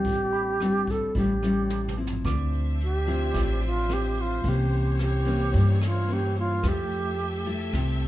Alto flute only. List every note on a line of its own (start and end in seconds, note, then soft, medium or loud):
0.00 0.92 G4 loud
0.91 1.17 A4 medium
1.17 1.95 G4 medium
2.84 3.60 G4 medium
3.66 3.95 F4 medium
3.93 4.22 G4 medium
4.21 4.50 F4 medium
4.49 5.01 G4 medium
5.02 5.79 G4 medium
5.86 6.14 F4 medium
6.13 6.38 G4 medium
6.39 6.69 F4 medium
6.68 7.48 G4 medium